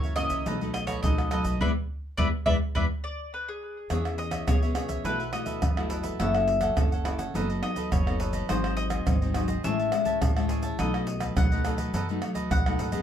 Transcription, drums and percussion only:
0.04 pandeiro, shaker
0.16 pandeiro, tamborim
0.30 pandeiro, shaker, surdo
0.46 pandeiro, shaker, surdo
0.61 pandeiro, shaker, surdo
0.74 pandeiro, tamborim, shaker
0.87 pandeiro, tamborim, shaker, surdo
1.04 pandeiro, shaker, surdo
1.18 pandeiro, tamborim, shaker
1.31 pandeiro, tamborim, shaker, surdo
1.44 pandeiro, shaker, surdo
1.61 surdo
2.18 surdo
2.46 surdo
2.75 surdo
3.90 pandeiro, tamborim, shaker, surdo
4.05 pandeiro, tamborim, shaker
4.18 pandeiro
4.31 pandeiro, tamborim, shaker, surdo
4.48 pandeiro, tamborim, shaker, surdo
4.62 pandeiro, shaker
4.75 pandeiro, tamborim, shaker
4.89 pandeiro, shaker, surdo
5.05 pandeiro, shaker, surdo
5.20 pandeiro, shaker
5.33 pandeiro, tamborim, shaker
5.46 pandeiro, shaker, surdo
5.62 pandeiro, tamborim, shaker, surdo
5.77 pandeiro, tamborim, shaker, surdo
5.90 pandeiro, shaker
6.04 pandeiro, shaker
6.20 pandeiro, tamborim, shaker, surdo
6.35 pandeiro, tamborim, shaker
6.48 pandeiro
6.61 pandeiro, tamborim, shaker, surdo
6.77 pandeiro, tamborim, shaker, surdo
6.92 pandeiro, shaker
7.05 pandeiro, tamborim
7.19 pandeiro, shaker, surdo
7.35 pandeiro, shaker, surdo
7.50 pandeiro, shaker
7.63 pandeiro, tamborim
7.76 pandeiro, shaker, surdo
7.92 pandeiro, tamborim, shaker, surdo
8.07 pandeiro, tamborim, shaker, surdo
8.20 pandeiro, shaker
8.33 pandeiro, shaker
8.49 pandeiro, tamborim, shaker, surdo
8.64 pandeiro, tamborim, shaker
8.77 pandeiro
8.90 pandeiro, tamborim, shaker, surdo
9.07 pandeiro, tamborim, shaker, surdo
9.22 pandeiro, shaker
9.34 pandeiro, tamborim
9.48 pandeiro, shaker, surdo
9.64 pandeiro, shaker, surdo
9.80 pandeiro, shaker
9.92 pandeiro, tamborim, shaker
10.05 pandeiro, shaker, surdo
10.22 pandeiro, tamborim, shaker, surdo
10.37 pandeiro, tamborim, shaker, surdo
10.49 pandeiro, shaker, surdo
10.62 pandeiro, shaker
10.79 pandeiro, tamborim, shaker, surdo
10.94 pandeiro, tamborim, shaker
11.07 pandeiro, shaker
11.20 pandeiro, tamborim, shaker, surdo
11.37 pandeiro, tamborim, shaker, surdo
11.52 pandeiro, shaker
11.65 pandeiro, tamborim, shaker
11.78 pandeiro, shaker, surdo
11.94 pandeiro, shaker, surdo
12.09 pandeiro, shaker
12.22 pandeiro, tamborim
12.35 pandeiro, shaker, surdo
12.51 pandeiro, tamborim, shaker, surdo
12.66 pandeiro, tamborim, shaker, surdo
12.79 pandeiro, shaker, surdo
12.92 pandeiro, shaker

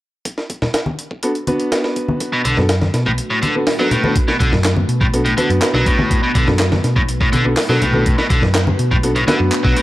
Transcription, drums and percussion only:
0.25 kick, closed hi-hat
0.38 snare
0.50 kick, closed hi-hat
0.62 snare, low conga
0.74 snare, closed hi-hat
0.86 high conga
0.99 closed hi-hat
1.11 kick
1.23 closed hi-hat
1.35 closed hi-hat
1.47 closed hi-hat, high conga
1.60 closed hi-hat
1.72 snare, closed hi-hat
1.84 snare
1.96 kick, closed hi-hat
2.08 high conga
2.20 kick, closed hi-hat
2.45 kick, closed hi-hat
2.57 snare, low conga
2.69 snare, closed hi-hat
2.81 snare, high conga
2.94 snare, closed hi-hat
3.06 kick
3.18 closed hi-hat
3.43 closed hi-hat, high conga
3.67 snare, open hi-hat
3.79 snare
3.91 closed hi-hat, low conga
4.04 high conga
4.16 kick, closed hi-hat
4.28 snare
4.40 kick, closed hi-hat
4.53 snare, low conga
4.64 snare, clap, closed hi-hat
4.76 high conga
4.89 closed hi-hat
5.01 kick
5.14 closed hi-hat
5.26 closed hi-hat
5.38 closed hi-hat, high conga
5.50 closed hi-hat
5.62 snare, clap, closed hi-hat
5.75 snare
5.86 kick, closed hi-hat
5.99 high conga
6.11 kick, closed hi-hat
6.35 kick, closed hi-hat
6.48 snare, low conga
6.59 snare, clap, closed hi-hat
6.72 snare, high conga
6.84 snare, closed hi-hat
6.96 kick
7.08 closed hi-hat
7.21 kick
7.33 closed hi-hat, high conga
7.57 snare, clap, open hi-hat
7.70 snare
7.82 closed hi-hat, low conga
7.93 high conga
8.06 kick, closed hi-hat
8.18 snare
8.30 kick, closed hi-hat
8.42 snare, low conga
8.55 snare, clap, closed hi-hat
8.67 high conga
8.79 closed hi-hat
8.91 kick
9.03 closed hi-hat
9.16 closed hi-hat
9.28 snare, closed hi-hat, high conga
9.52 clap, closed hi-hat
9.65 kick
9.77 closed hi-hat

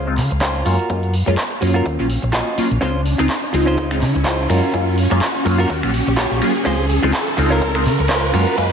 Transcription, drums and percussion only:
0.18 clap, open hi-hat
0.31 closed hi-hat
0.41 kick, clap, closed hi-hat
0.55 closed hi-hat
0.66 open hi-hat
0.79 closed hi-hat
0.90 kick, closed hi-hat
1.03 closed hi-hat
1.14 open hi-hat
1.27 closed hi-hat
1.37 kick, clap, closed hi-hat
1.51 closed hi-hat
1.62 open hi-hat
1.75 closed hi-hat
1.86 kick, closed hi-hat
2.10 open hi-hat
2.23 closed hi-hat
2.33 kick, clap, closed hi-hat
2.47 closed hi-hat
2.58 open hi-hat
2.71 closed hi-hat
2.82 kick, closed hi-hat, tambourine
3.06 open hi-hat, tambourine
3.19 finger snap, closed hi-hat, tambourine
3.29 kick, clap, closed hi-hat, tambourine
3.43 closed hi-hat, tambourine
3.54 open hi-hat, tambourine
3.67 closed hi-hat, tambourine
3.78 kick, closed hi-hat, tambourine
3.91 finger snap
4.01 clap, open hi-hat, tambourine
4.15 closed hi-hat, tambourine
4.25 kick, clap, closed hi-hat, tambourine
4.39 closed hi-hat
4.50 finger snap, open hi-hat, tambourine
4.63 closed hi-hat, tambourine
4.74 kick, closed hi-hat, tambourine
4.98 open hi-hat, tambourine
5.11 finger snap, closed hi-hat, tambourine
5.21 kick, clap, closed hi-hat, tambourine
5.35 closed hi-hat, tambourine
5.46 open hi-hat, tambourine
5.59 closed hi-hat, tambourine
5.70 kick, closed hi-hat, tambourine
5.83 finger snap
5.94 open hi-hat, tambourine
6.07 closed hi-hat, tambourine
6.18 kick, clap, closed hi-hat, tambourine
6.31 closed hi-hat
6.42 finger snap, open hi-hat, tambourine
6.55 closed hi-hat, tambourine
6.66 kick, closed hi-hat, tambourine
6.90 open hi-hat, tambourine
7.03 finger snap, closed hi-hat, tambourine
7.14 kick, clap, closed hi-hat, tambourine
7.27 closed hi-hat, tambourine
7.38 open hi-hat, tambourine
7.51 closed hi-hat, tambourine
7.62 kick, closed hi-hat, tambourine
7.75 finger snap
7.85 clap, open hi-hat, tambourine
7.99 closed hi-hat, tambourine
8.10 kick, clap, closed hi-hat, tambourine
8.23 closed hi-hat
8.34 finger snap, open hi-hat, tambourine
8.47 closed hi-hat, tambourine
8.58 kick, closed hi-hat, tambourine

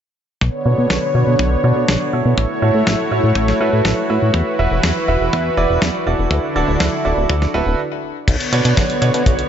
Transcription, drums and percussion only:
0.41 kick
0.90 kick, snare
1.39 kick
1.88 kick, snare
2.38 kick
2.87 kick, snare
3.35 kick
3.48 snare
3.85 kick, snare
4.34 kick
4.83 kick, snare
5.33 kick
5.82 kick, snare
6.31 kick
6.80 kick, snare
7.30 kick
7.42 snare
8.28 kick, closed hi-hat, crash
8.40 closed hi-hat
8.53 closed hi-hat
8.65 closed hi-hat
8.77 kick, snare, closed hi-hat
8.90 closed hi-hat
9.02 closed hi-hat
9.14 closed hi-hat
9.26 kick, closed hi-hat
9.39 closed hi-hat

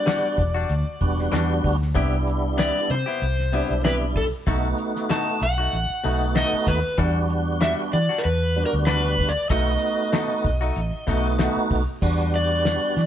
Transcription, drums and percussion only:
0.07 snare, closed hi-hat
0.38 kick, closed hi-hat
0.69 closed hi-hat
1.01 kick, closed hi-hat
1.19 snare
1.33 snare, closed hi-hat
1.64 kick, open hi-hat
1.82 snare
1.96 kick, closed hi-hat
2.27 closed hi-hat
2.59 snare, closed hi-hat
2.90 snare, closed hi-hat
3.22 closed hi-hat
3.39 snare
3.53 closed hi-hat
3.84 snare, closed hi-hat
4.16 kick, open hi-hat
4.47 kick, closed hi-hat
4.78 closed hi-hat
4.96 snare
5.10 snare, closed hi-hat
5.41 closed hi-hat
5.72 closed hi-hat
6.04 closed hi-hat
6.35 snare, closed hi-hat
6.67 kick, open hi-hat
6.98 kick, closed hi-hat
7.29 closed hi-hat
7.61 snare, closed hi-hat
7.92 closed hi-hat
8.23 closed hi-hat
8.55 closed hi-hat
8.86 snare, closed hi-hat
9.18 kick, open hi-hat
9.50 kick, closed hi-hat
9.81 closed hi-hat
10.13 snare, closed hi-hat
10.44 kick, closed hi-hat
10.76 closed hi-hat
11.07 kick, closed hi-hat
11.39 snare, closed hi-hat
11.70 kick, open hi-hat
12.02 kick, crash
12.34 closed hi-hat
12.65 snare, closed hi-hat
12.96 snare, closed hi-hat

